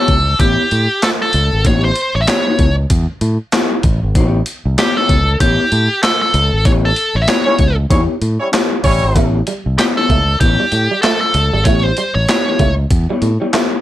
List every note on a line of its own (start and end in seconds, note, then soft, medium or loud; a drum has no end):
0.00 0.13 B3 medium
0.00 0.13 E4 medium
0.00 0.13 G4 medium
0.00 0.40 A4 medium
0.00 0.13 C#5 loud
0.08 0.34 C#2 loud
0.08 kick loud
0.08 closed hi-hat medium
0.39 0.55 A1 medium
0.39 0.61 B3 medium
0.39 0.61 E4 medium
0.39 0.62 G4 medium
0.39 1.03 G4 medium
0.39 0.62 C#5 medium
0.39 kick loud
0.39 closed hi-hat loud
0.71 0.87 A2 medium
0.71 closed hi-hat medium
1.02 1.08 A4 medium
1.02 snare loud
1.02 clap medium
1.02 closed hi-hat medium
1.22 1.67 A4 loud
1.33 1.49 C#2 loud
1.33 closed hi-hat medium
1.53 1.63 G#1 loud
1.65 1.91 A1 loud
1.65 1.87 B3 medium
1.65 1.88 E4 medium
1.65 1.88 G4 medium
1.65 1.88 C#5 loud
1.65 1.84 C#5 loud
1.65 kick loud
1.65 closed hi-hat loud
1.85 2.13 C5 loud
1.96 closed hi-hat medium
2.15 2.25 A1 medium
2.15 2.21 C#5 loud
2.21 2.26 E5 medium
2.27 2.46 B3 medium
2.27 2.46 E4 medium
2.27 2.46 G4 medium
2.27 2.75 C#5 loud
2.27 2.45 C#5 medium
2.27 snare loud
2.27 clap loud
2.27 closed hi-hat medium
2.46 2.65 B3 medium
2.46 2.65 E4 medium
2.46 2.65 G4 medium
2.46 2.64 C#5 loud
2.59 2.85 C#2 loud
2.59 kick medium
2.59 closed hi-hat medium
2.90 3.06 E2 medium
2.90 kick loud
2.90 closed hi-hat loud
3.21 3.37 A2 medium
3.21 closed hi-hat medium
3.52 3.75 B3 medium
3.52 3.75 E4 loud
3.52 3.75 G4 medium
3.52 3.75 C#5 loud
3.52 snare loud
3.52 clap loud
3.52 closed hi-hat medium
3.83 3.99 A1 medium
3.83 kick loud
3.83 closed hi-hat medium
4.03 4.13 G#1 medium
4.15 4.41 A1 loud
4.15 4.38 B3 medium
4.15 4.38 E4 medium
4.15 4.38 G4 medium
4.15 4.38 C#5 loud
4.15 kick loud
4.15 closed hi-hat loud
4.46 closed hi-hat medium
4.65 4.76 C2 loud
4.77 4.96 B3 medium
4.77 4.96 E4 medium
4.77 4.96 G4 medium
4.77 4.97 G4 medium
4.77 4.96 C#5 medium
4.77 snare loud
4.77 clap medium
4.77 closed hi-hat medium
4.97 5.15 B3 medium
4.97 5.15 E4 medium
4.97 5.14 G4 medium
4.97 5.40 A4 medium
4.97 5.14 C#5 loud
5.09 5.35 C#2 loud
5.09 kick medium
5.09 closed hi-hat medium
5.40 5.56 A1 loud
5.40 5.62 B3 medium
5.40 5.62 E4 medium
5.40 5.62 G4 loud
5.40 6.02 G4 medium
5.40 5.63 C#5 loud
5.40 kick loud
5.40 closed hi-hat loud
5.72 5.87 A2 medium
5.72 closed hi-hat medium
6.03 6.20 A4 medium
6.03 snare loud
6.03 clap loud
6.03 closed hi-hat medium
6.22 6.67 A4 loud
6.34 6.49 C#2 loud
6.34 closed hi-hat medium
6.52 6.63 G#1 loud
6.65 6.91 A1 loud
6.65 6.87 B3 medium
6.65 6.87 E4 medium
6.65 6.88 G4 medium
6.65 6.70 C#5 loud
6.65 6.88 C#5 loud
6.65 kick loud
6.65 closed hi-hat loud
6.85 7.17 A4 medium
6.96 closed hi-hat medium
7.15 7.25 A1 loud
7.15 7.21 C#5 loud
7.21 7.27 E5 medium
7.27 7.46 B3 medium
7.27 7.46 E4 medium
7.27 7.46 G4 medium
7.27 7.46 C#5 medium
7.27 7.75 C#5 loud
7.27 snare loud
7.27 clap medium
7.27 closed hi-hat medium
7.46 7.55 G3 medium
7.46 7.65 B3 medium
7.46 7.54 C#4 medium
7.46 7.55 E4 medium
7.46 7.65 E4 medium
7.46 7.65 G4 medium
7.46 7.54 C#5 loud
7.46 7.64 C#5 loud
7.59 7.85 C#2 loud
7.59 kick loud
7.59 closed hi-hat medium
7.90 8.06 E2 loud
7.90 8.02 G3 medium
7.90 8.12 B3 medium
7.90 8.02 C#4 medium
7.90 8.13 E4 medium
7.90 8.02 E4 medium
7.90 8.13 G4 medium
7.90 8.02 C#5 medium
7.90 8.13 C#5 medium
7.90 kick loud
7.90 closed hi-hat loud
8.21 8.37 A2 medium
8.21 closed hi-hat medium
8.40 8.48 G3 medium
8.40 8.48 C#4 medium
8.40 8.48 E4 medium
8.40 8.48 C#5 loud
8.52 8.74 B3 medium
8.52 8.74 E4 medium
8.52 8.75 G4 medium
8.52 8.75 C#5 medium
8.52 snare loud
8.52 clap loud
8.52 closed hi-hat loud
8.84 9.00 A1 loud
8.84 9.27 G3 loud
8.84 9.26 C#4 loud
8.84 9.27 E4 medium
8.84 9.26 C#5 loud
8.84 kick medium
8.84 open hi-hat medium
9.03 9.13 G#1 medium
9.15 9.41 A1 loud
9.15 9.31 A3 medium
9.15 9.37 B3 medium
9.15 9.37 E4 medium
9.15 9.37 G4 medium
9.15 9.37 C#5 loud
9.15 kick loud
9.15 closed hi-hat loud
9.36 muted clean electric guitar stroke soft
9.47 9.63 G3 medium
9.47 closed hi-hat medium
9.66 9.76 C2 medium
9.78 9.96 B3 medium
9.78 9.96 E4 medium
9.78 9.83 G4 medium
9.78 9.96 G4 medium
9.78 9.95 C#5 medium
9.78 snare loud
9.78 clap loud
9.78 closed hi-hat loud
9.97 10.15 B3 medium
9.97 10.14 E4 medium
9.97 10.14 G4 medium
9.97 10.40 A4 medium
9.97 10.14 C#5 medium
10.10 10.35 C#2 loud
10.10 10.25 A3 medium
10.10 kick medium
10.10 closed hi-hat medium
10.40 10.56 A1 loud
10.40 10.62 B3 medium
10.40 10.62 E4 medium
10.40 11.01 G4 medium
10.40 10.62 G4 medium
10.40 10.62 C#5 medium
10.40 kick loud
10.40 closed hi-hat loud
10.60 10.70 G3 medium
10.72 10.87 A2 medium
10.72 muted clean electric guitar stroke soft
10.72 closed hi-hat medium
10.91 11.01 G3 medium
11.02 11.19 A3 medium
11.02 11.19 A4 medium
11.02 snare loud
11.02 clap loud
11.02 closed hi-hat medium
11.21 11.66 A4 medium
11.34 11.50 C#2 medium
11.34 muted clean electric guitar stroke soft
11.34 closed hi-hat medium
11.53 11.63 G#1 medium
11.53 11.63 G3 medium
11.64 11.91 A1 loud
11.64 11.81 A3 medium
11.64 11.87 B3 medium
11.64 11.87 E4 medium
11.64 11.88 G4 medium
11.64 11.83 C#5 loud
11.64 11.88 C#5 medium
11.64 kick loud
11.64 closed hi-hat loud
11.83 12.14 C5 loud
11.83 muted clean electric guitar stroke soft
11.97 12.13 G3 medium
11.97 closed hi-hat medium
12.15 12.25 A1 medium
12.15 12.73 C#5 loud
12.28 12.47 B3 medium
12.28 12.46 E4 medium
12.28 12.46 G4 medium
12.28 12.45 C#5 medium
12.28 snare loud
12.28 clap loud
12.28 closed hi-hat loud
12.47 12.64 B3 medium
12.47 12.64 E4 medium
12.47 12.64 G4 medium
12.47 12.64 C#5 loud
12.59 12.85 C#2 loud
12.59 12.75 A3 medium
12.59 kick medium
12.59 closed hi-hat medium
12.90 13.06 E2 medium
12.90 kick loud
12.90 closed hi-hat loud
13.09 13.20 G3 medium
13.09 13.27 B3 medium
13.09 13.27 E4 medium
13.09 13.27 G4 medium
13.09 13.26 C#5 medium
13.22 13.37 A2 medium
13.22 muted clean electric guitar stroke medium
13.22 closed hi-hat medium
13.40 13.51 G3 medium
13.40 13.51 B3 medium
13.40 13.51 E4 medium
13.40 13.52 G4 medium
13.40 13.52 C#5 medium
13.52 13.69 A3 medium
13.52 13.74 B3 loud
13.52 13.74 E4 medium
13.52 13.75 G4 medium
13.52 13.75 C#5 medium
13.52 snare loud
13.52 clap loud
13.52 closed hi-hat medium